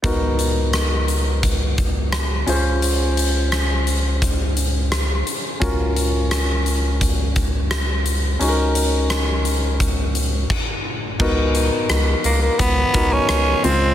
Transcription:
0.02 analog synth bass C#2, grand piano B3 D#4 F#4 A#4, kick, closed hi-hat
0.39 closed hi-hat
0.73 cross-stick, closed hi-hat
1.08 closed hi-hat
1.43 kick, closed hi-hat
1.78 kick, closed hi-hat
2.12 cross-stick, closed hi-hat
2.47 analog synth bass C#2, grand piano C#4 F4 G#4 C5, closed hi-hat
2.82 closed hi-hat
3.17 closed hi-hat
3.52 cross-stick, closed hi-hat
3.87 closed hi-hat
4.22 kick, closed hi-hat
4.57 closed hi-hat
4.92 cross-stick, closed hi-hat
5.27 closed hi-hat
5.60 analog synth bass C#2, grand piano C#4 F4 F#4 A#4, kick, closed hi-hat
5.96 closed hi-hat
6.31 cross-stick, closed hi-hat
6.66 closed hi-hat
7.01 kick, closed hi-hat
7.36 kick, closed hi-hat
7.71 cross-stick, closed hi-hat
8.06 closed hi-hat
8.39 analog synth bass C#2, grand piano C#4 D#4 F#4 G#4, closed hi-hat
8.48 grand piano A#4
8.75 closed hi-hat
9.10 cross-stick, closed hi-hat
9.45 closed hi-hat
9.80 kick, closed hi-hat
10.15 closed hi-hat
10.50 kick, crash
11.19 analog synth bass C#2, grand piano B3 D#4 F#4 A#4, kick, crash
11.55 closed hi-hat
11.89 analog synth bass C#2, cross-stick, closed hi-hat
12.24 analog synth bass C#2, tenor saxophone A#3, closed hi-hat
12.42 tenor saxophone A#3
12.59 analog synth bass C#2, tenor saxophone B3, kick, closed hi-hat
12.93 analog synth bass C#2, grand piano B3 D#4 F#4 A#4, kick, closed hi-hat
13.13 tenor saxophone C#4
13.29 analog synth bass C#2, cross-stick, closed hi-hat
13.63 analog synth bass C#2, grand piano C#3 G#3 C4 F4, tenor saxophone C4, closed hi-hat

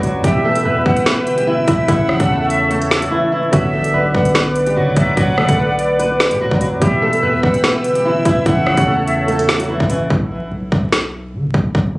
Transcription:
Already playing: 808-style bass B1, grand piano D3 F#3 B3 F#4, analog synth pad B4 D5 F#5 D6
0.03 nylon-string guitar F#3 F#4, closed hi-hat
0.14 808-style bass F#2
0.22 808-style bass E1, grand piano B2 E3 G3 E4, nylon-string guitar G3 G4, analog synth pad B4 E5 G5 E6, flute E5, kick, closed hi-hat
0.45 nylon-string guitar A3 A4
0.55 closed hi-hat
0.65 808-style bass E2, nylon-string guitar B3 B4
0.86 808-style bass E1, flute F#5, kick
0.96 closed hi-hat
1.06 nylon-string guitar B3 B4, snare
1.27 808-style bass G1, closed hi-hat
1.37 nylon-string guitar G3 G4, closed hi-hat
1.47 nylon-string guitar E3 E4
1.68 808-style bass E1, nylon-string guitar E3 E4, flute E5, kick, closed hi-hat
1.87 808-style bass A1, grand piano C#3 E3 A3 E4, nylon-string guitar E3 E4, analog synth pad C#5 E5 A5, flute F#5, kick, closed hi-hat
2.09 808-style bass A1, nylon-string guitar G3 G4, cross-stick
2.20 808-style bass E2, kick, closed hi-hat
2.30 nylon-string guitar A3 A4
2.50 flute E5, closed hi-hat
2.70 nylon-string guitar A3 A4, closed hi-hat
2.82 closed hi-hat
2.91 snare
3.02 nylon-string guitar F#3 F#4, closed hi-hat
3.11 nylon-string guitar E3 E4
3.32 nylon-string guitar E3 E4
3.51 808-style bass B1, grand piano D3 F#3 B3 F#4, nylon-string guitar F#3 F#4, analog synth pad B4 D5 F#5 D6, flute E5, kick, closed hi-hat
3.73 808-style bass A1, nylon-string guitar A3 A4
3.84 808-style bass B1, closed hi-hat
3.94 808-style bass B1, nylon-string guitar B3 B4
4.14 808-style bass B1, flute F#5, kick
4.25 closed hi-hat
4.34 nylon-string guitar B3 B4, snare
4.55 closed hi-hat
4.66 nylon-string guitar G3 G4, closed hi-hat
4.76 808-style bass D3, nylon-string guitar F#3 F#4
4.87 808-style bass B1
4.96 808-style bass B1, nylon-string guitar F#3 F#4, flute E5, kick, closed hi-hat
5.17 808-style bass B1, nylon-string guitar F#3 F#4, flute F#5, kick, closed hi-hat
5.38 808-style bass B2, nylon-string guitar A3 A4, cross-stick
5.49 808-style bass B1, kick, closed hi-hat
5.58 nylon-string guitar B3 B4
5.79 flute D5, closed hi-hat
5.99 nylon-string guitar B3 B4, closed hi-hat
6.20 snare
6.31 808-style bass B2, nylon-string guitar G3 G4, closed hi-hat
6.41 808-style bass B1, nylon-string guitar F#3 F#4
6.51 808-style bass B1, kick
6.61 nylon-string guitar F#3 F#4, closed hi-hat
6.72 808-style bass F#2
6.80 808-style bass E1, grand piano B2 E3 G3 E4, nylon-string guitar G3 G4, analog synth pad E5 G5 E6, flute E5, kick, closed hi-hat
7.02 nylon-string guitar A3 A4
7.13 closed hi-hat
7.23 808-style bass E2, nylon-string guitar B3 B4
7.43 808-style bass E1, flute F#5, kick
7.54 closed hi-hat
7.64 nylon-string guitar B3 B4, snare
7.84 808-style bass G1, closed hi-hat
7.95 nylon-string guitar G3 G4, closed hi-hat
8.05 nylon-string guitar E3 E4
8.25 808-style bass E1, nylon-string guitar E3 E4, flute E5, kick, closed hi-hat
8.44 808-style bass A1, grand piano C#3 E3 A3 E4, nylon-string guitar E3 E4, analog synth pad C#5 A5, flute F#5, kick, closed hi-hat
8.66 808-style bass A1, nylon-string guitar G3 G4, cross-stick
8.77 808-style bass E2, kick, closed hi-hat
8.88 nylon-string guitar A3 A4
9.07 flute E5, closed hi-hat
9.28 nylon-string guitar A3 A4, closed hi-hat
9.39 closed hi-hat
9.49 snare
9.59 nylon-string guitar F#3 F#4, closed hi-hat
9.68 nylon-string guitar E3 E4
9.80 808-style bass A1, kick
9.90 nylon-string guitar E3 E4, closed hi-hat
10.10 808-style bass B1, kick
10.31 808-style bass A1
10.42 808-style bass B1
10.52 808-style bass B1
10.72 808-style bass B1, kick
10.92 snare
11.34 808-style bass D3
11.45 808-style bass B1
11.54 808-style bass B1, kick
11.75 808-style bass B1, kick

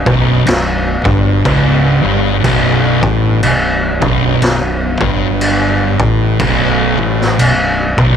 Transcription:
Already playing: synth drone F#3 B3 D4
0.06 fingered electric bass B0, distorted electric guitar B1, kick
0.46 fingered electric bass B0, distorted electric guitar B1, snare, crash
1.04 fingered electric bass G1, distorted electric guitar G2, kick
1.44 fingered electric bass C#1, distorted electric guitar C#2, kick, crash
2.02 fingered electric bass G1, distorted electric guitar G2
2.44 fingered electric bass B0, distorted electric guitar B1, kick, crash
3.03 fingered electric bass A1, distorted electric guitar A2, kick
3.43 fingered electric bass B0, distorted electric guitar B1, crash
4.01 fingered electric bass B0, distorted electric guitar B1, kick
4.41 fingered electric bass B0, distorted electric guitar B1, snare, crash
5.01 fingered electric bass G1, distorted electric guitar G2, kick
5.41 crash
6.00 fingered electric bass A1, distorted electric guitar A2, kick
6.39 fingered electric bass B0, distorted electric guitar B1, kick, crash
6.98 fingered electric bass A1, distorted electric guitar A2
7.21 snare
7.39 fingered electric bass B0, distorted electric guitar B1, crash
7.98 fingered electric bass B0, distorted electric guitar B1, kick

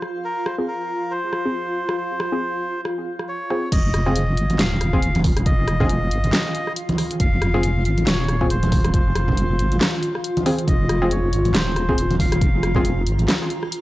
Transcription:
Already playing: ambient pad F4 F5
0.02 cross-stick
0.25 melodica A#4
0.46 melodica C5, cross-stick
0.58 synth stab C4 F4 G#4
0.68 melodica A#4
1.11 melodica C5
1.33 cross-stick
1.45 synth stab C4 F4 G#4
1.89 cross-stick
1.98 melodica C5
2.20 cross-stick
2.32 synth stab C4 F4 G#4
2.85 cross-stick
3.19 cross-stick
3.29 melodica C#5
3.50 synth stab C4 F4 G#4, cross-stick
3.72 wobble bass F1, ambient pad F4 F5, melodica D#5, kick, closed hi-hat, crash
3.94 cross-stick, closed hi-hat
4.06 synth stab C4 F4 G#4
4.16 closed hi-hat
4.37 wobble bass G#1, closed hi-hat
4.50 closed hi-hat, high conga
4.59 wobble bass D#1, melodica F5, snare, clap, closed hi-hat
4.81 cross-stick, closed hi-hat
4.93 synth stab C4 F4 G#4, kick
5.02 closed hi-hat
5.15 closed hi-hat, high conga
5.24 kick, open hi-hat
5.37 cross-stick, closed hi-hat
5.46 wobble bass F1, melodica D#5, kick, closed hi-hat
5.68 cross-stick, closed hi-hat
5.80 synth stab C4 F4 G#4, kick, low conga
5.89 closed hi-hat
6.11 wobble bass G#1, closed hi-hat
6.24 closed hi-hat, high conga
6.33 cross-stick, snare, clap, closed hi-hat
6.55 closed hi-hat
6.67 cross-stick
6.76 closed hi-hat
6.89 closed hi-hat, high conga
6.98 cross-stick, open hi-hat
7.11 closed hi-hat
7.20 wobble bass F1, melodica F5, kick, closed hi-hat
7.42 cross-stick, closed hi-hat
7.54 synth stab C4 F4 G#4
7.63 closed hi-hat
7.85 wobble bass G#1, melodica F5, closed hi-hat
7.97 closed hi-hat, high conga
8.07 wobble bass D#1, melodica C#5, snare, clap, closed hi-hat
8.28 cross-stick, closed hi-hat
8.41 synth stab C4 F4 G#4, kick
8.50 melodica C5, closed hi-hat
8.63 closed hi-hat, high conga
8.72 kick, open hi-hat
8.85 cross-stick, closed hi-hat
8.94 wobble bass F1, melodica C5, kick, closed hi-hat
9.15 cross-stick, closed hi-hat
9.28 kick, low conga
9.37 closed hi-hat
9.59 wobble bass G#1, closed hi-hat
9.72 closed hi-hat, high conga
9.81 cross-stick, snare, clap, closed hi-hat
10.03 closed hi-hat
10.15 cross-stick
10.24 closed hi-hat
10.37 closed hi-hat, high conga
10.46 synth stab C4 F4 G#4, cross-stick, open hi-hat
10.59 closed hi-hat
10.68 wobble bass F1, melodica D#5, ambient pad A#5, kick, closed hi-hat
10.89 cross-stick, closed hi-hat
11.02 synth stab C4 F4 G#4
11.11 melodica C#5, closed hi-hat
11.33 wobble bass G#1, closed hi-hat
11.45 closed hi-hat, high conga
11.55 wobble bass D#1, melodica C5, snare, clap, closed hi-hat
11.76 cross-stick, closed hi-hat
11.89 synth stab C4 F4 G#4, kick
11.98 closed hi-hat
12.11 closed hi-hat, high conga
12.20 melodica F5, kick, open hi-hat
12.32 cross-stick, closed hi-hat
12.41 wobble bass F1, kick, closed hi-hat
12.63 cross-stick, closed hi-hat
12.75 synth stab C4 F4 G#4, kick, low conga
12.85 closed hi-hat
13.07 wobble bass G#1, closed hi-hat
13.19 closed hi-hat, high conga
13.28 cross-stick, snare, clap, closed hi-hat
13.50 closed hi-hat
13.63 cross-stick
13.72 closed hi-hat

